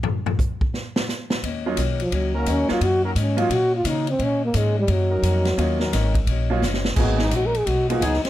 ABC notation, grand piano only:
X:1
M:4/4
L:1/8
Q:"Swing" 1/4=173
K:Ebm
V:1 name="Grand piano"
z8 | z [G,B,DEF] z4 z [G,B,DEF] | z3 [G,B,DEF] z4 | z8 |
[G,B,DEF] z4 [G,B,DEF] z2 | [A,B,CEG] z4 [A,B,CEG] z2 |]